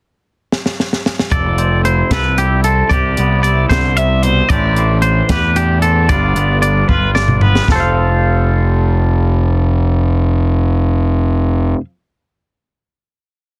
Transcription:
0.52 snare medium
0.66 snare medium
0.80 snare medium
0.93 snare medium
1.06 snare medium
1.19 snare medium
1.31 2.02 F1 medium
1.31 2.91 F2 medium
1.31 2.11 A4 medium
1.31 1.85 D5 medium
1.31 kick loud
1.31 closed hi-hat medium
1.58 2.66 C4 medium
1.58 closed hi-hat soft
1.85 2.39 E4 medium
1.85 2.11 C5 medium
1.85 closed hi-hat medium
2.11 2.82 C2 medium
2.11 2.88 A4 medium
2.11 2.38 B4 medium
2.11 kick medium
2.11 snare loud
2.11 closed hi-hat medium
2.38 3.46 E4 soft
2.38 2.64 G4 medium
2.38 closed hi-hat medium
2.64 3.19 C4 medium
2.64 2.91 A4 medium
2.64 closed hi-hat medium
2.89 3.14 C2 medium
2.89 3.71 C3 medium
2.89 4.52 G4 medium
2.89 3.42 D5 medium
2.89 kick medium
2.89 closed hi-hat medium
3.17 3.65 C2 medium
3.17 4.51 B3 medium
3.17 closed hi-hat medium
3.43 4.49 E4 medium
3.43 3.69 D5 medium
3.43 closed hi-hat medium
3.69 4.41 C2 medium
3.69 3.98 D3 medium
3.69 3.97 C5 medium
3.69 kick medium
3.69 snare medium
3.69 closed hi-hat medium
3.97 4.24 C3 medium
3.97 4.23 E5 medium
3.97 closed hi-hat medium
4.23 4.50 B2 medium
4.23 4.49 C5 medium
4.23 closed hi-hat medium
4.49 5.21 A1 medium
4.49 6.07 A2 medium
4.49 6.08 A3 medium
4.49 4.77 C4 medium
4.49 5.04 D4 medium
4.49 5.01 D5 medium
4.49 kick medium
4.49 closed hi-hat medium
4.53 5.30 G4 medium
4.76 5.83 C4 medium
4.76 closed hi-hat soft
5.02 5.56 D4 medium
5.02 5.30 C5 medium
5.02 closed hi-hat soft
5.29 6.11 E2 medium
5.29 6.07 G4 medium
5.29 5.56 B4 medium
5.29 kick medium
5.29 snare medium
5.29 closed hi-hat medium
5.56 6.07 D4 medium
5.56 5.82 G4 medium
5.56 closed hi-hat medium
5.82 6.07 C4 medium
5.82 6.09 A4 medium
5.82 closed hi-hat medium
6.08 6.33 G1 medium
6.08 7.65 G2 medium
6.08 7.65 G3 medium
6.08 6.35 B3 medium
6.08 6.61 D4 medium
6.08 6.88 F4 medium
6.08 6.61 D5 medium
6.08 kick medium
6.08 closed hi-hat medium
6.35 6.83 G1 medium
6.35 7.41 B3 medium
6.35 closed hi-hat soft
6.62 7.16 D4 medium
6.62 6.88 D5 medium
6.62 closed hi-hat medium
6.88 7.60 G1 medium
6.88 7.75 F4 medium
6.88 7.14 B4 medium
6.88 kick medium
6.88 high tom soft
7.15 7.66 D4 medium
7.15 7.41 D5 medium
7.15 snare medium
7.28 mid tom medium
7.41 7.66 B3 soft
7.41 7.68 B4 medium
7.41 floor tom medium
7.55 snare medium
7.68 11.73 F1 medium
7.68 11.77 F2 medium
7.68 11.79 F3 medium
7.68 11.76 A4 medium
7.68 kick medium
7.68 snare medium
7.72 11.81 C4 medium
7.72 11.84 A4 medium
7.72 11.80 C5 medium
7.80 11.85 F5 medium

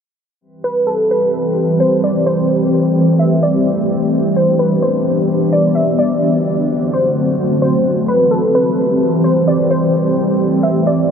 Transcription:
0.41 5.95 E3 medium
0.41 2.25 G3 medium
0.41 4.09 C4 medium
0.41 2.25 C4 medium
0.41 2.25 G4 medium
0.41 2.25 B4 medium
0.41 2.25 E5 medium
0.64 0.86 B4 medium
0.87 1.09 A4 medium
1.11 1.33 B4 medium
1.80 2.02 C5 medium
2.04 2.26 D5 medium
2.26 5.95 G3 medium
2.26 4.11 A3 medium
2.26 4.11 C4 medium
2.26 5.95 G4 medium
2.26 4.11 A4 medium
2.26 3.16 C5 loud
2.26 4.11 G5 medium
3.19 3.42 E5 medium
3.43 3.65 D5 medium
4.12 5.97 B3 medium
4.12 5.97 D4 medium
4.12 5.97 G4 medium
4.12 5.97 E5 medium
4.36 4.58 C5 medium
4.59 4.81 B4 medium
4.82 5.05 C5 medium
5.53 5.75 D5 loud
5.75 5.97 E5 medium
5.98 7.83 D3 medium
5.98 7.83 F#3 medium
5.98 7.83 A3 medium
5.98 11.11 C4 medium
5.98 7.83 F#4 medium
5.98 7.83 D5 medium
5.98 6.88 D5 loud
6.93 7.58 C5 medium
7.62 7.84 C5 medium
7.85 9.69 E3 medium
7.85 11.11 G3 medium
7.85 11.11 G4 medium
7.85 9.69 B4 medium
7.85 9.69 E5 medium
8.08 8.30 B4 medium
8.31 8.53 A4 medium
8.55 8.77 B4 medium
9.24 9.46 C5 medium
9.48 9.70 D5 medium
9.71 11.11 E3 medium
9.71 11.11 A3 medium
9.71 11.11 A4 medium
9.71 10.60 C5 loud
9.71 11.11 G5 medium
10.63 10.86 E5 medium
10.87 11.09 D5 medium

